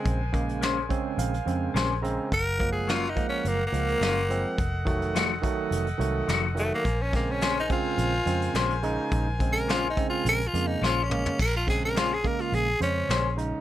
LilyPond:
<<
  \new Staff \with { instrumentName = "Horn section" } { \time 4/4 \key bes \minor \tempo 4 = 106 << { aes''1 | ges''1~ | ges''1 | aes''1~ |
aes''1 | r1 | } \\ { <bes' c''>1 | <bes' f''>1 | <a' ees''>1 | <bes' c''>1~ |
<bes' c''>1 | r1 | } >> }
  \new Staff \with { instrumentName = "Tenor saxophone" } { \time 4/4 \key bes \minor aes16 r2. r8. | \tuplet 3/2 { bes'4 aes'8 f'8 ees'8 des'8 bes8 bes4~ } bes4~ | bes16 r2. r16 a16 bes16~ | bes16 des'16 bes16 des'8 ees'16 f'2 r8 |
\tuplet 3/2 { r4 bes'8 f'8 ees'8 f'8 bes'8 f'8 ees'8 f'8 des'4 } | bes'16 f'16 aes'16 bes'16 f'16 aes'16 bes'16 f'16 aes'8 des'4 r8 | }
  \new Staff \with { instrumentName = "Clean electric guitar" } { \time 4/4 \key bes \minor r4 <bes des' aes' c''>8 r4. <bes des' aes' c''>8 r8 | r4 <ges bes des' f'>8 r4. <ges bes des' f'>8 r8 | r4 <f a ees' ges'>8 r4. <f a ees' ges'>8 r8 | r4 <bes des' aes' c''>8 r4. <bes des' aes' c''>8 r8 |
r4 <bes des' aes' c''>8 r4. <bes des' aes' c''>8 r8 | r4 <bes des' aes' c''>8 r4. <bes des' aes' c''>8 r8 | }
  \new Staff \with { instrumentName = "Tine electric piano" } { \time 4/4 \key bes \minor r4. des''8 f''4 aes''8 bes''8 | r1 | r1 | r1 |
r1 | r1 | }
  \new Staff \with { instrumentName = "Tine electric piano" } { \clef bass \time 4/4 \key bes \minor <des aes c'>16 r16 <des aes bes>8. r16 <des aes c'>8. r16 <des aes c'>8. r16 <des aes c'>8 | r8 <f aes bes>8. r16 <f aes bes>8. r16 <f aes bes>8. r16 <f aes c'>8 | r8 <ees ges a>8. r16 <ees ges a>8. r16 <ees ges a>8. r16 <ees ges a>8 | r8 <des aes c'>8. r16 <des aes c'>8. r16 <des aes c'>8. r16 <des aes ees'>8~ |
<des aes ees'>16 r16 <des aes c'>8. r16 <des aes c'>8. r16 <des aes bes>8. r16 <des aes bes>8 | r8 <des aes c'>8. r16 <des aes bes>8. r16 <des aes c''>8. r16 <des aes ees'>8 | }
  \new Staff \with { instrumentName = "Fingered electric bass" } { \clef bass \time 4/4 \key bes \minor bes,,2 bes,,8 f,8 bes,,4 | ges,,2 ges,,8 des,8 ges,,4 | f,,2 f,,8 c,8 f,,4 | bes,,2 bes,,8 f,8 bes,,4 |
bes,,2 bes,,8 f,8 bes,,4 | bes,,2 bes,,8 f,8 bes,,4 | }
  \new DrumStaff \with { instrumentName = "Drums" } \drummode { \time 4/4 <hh bd>8 <hh bd>16 hh16 <hh sn>8 <hh bd>8 hh16 hh16 hh8 <hh sn>8 hh8 | <hh bd>8 <hh bd>8 <hh sn>16 hh16 <hh bd>8 hh8 hh16 hh16 <hh sn>16 hh16 hh8 | <hh bd>8 <hh bd>16 hh16 <hh sn>8 <hh bd>8 hh16 hh16 hh8 <hh sn>8 hh8 | <hh bd>8 <hh bd sn>8 <hh sn>16 hh16 <hh bd>8 hh8 hh16 hh16 <hh sn>16 hh16 hh8 |
<hh bd>8 <hh bd>16 hh16 <hh sn>8 <hh bd>8 hh16 hh16 hh8 sn8 toml16 tomfh16 | <cymc bd>8 <hh bd sn>8 <hh sn>8 <hh bd>16 hh16 hh8 hh8 <hh sn>8 hh8 | }
>>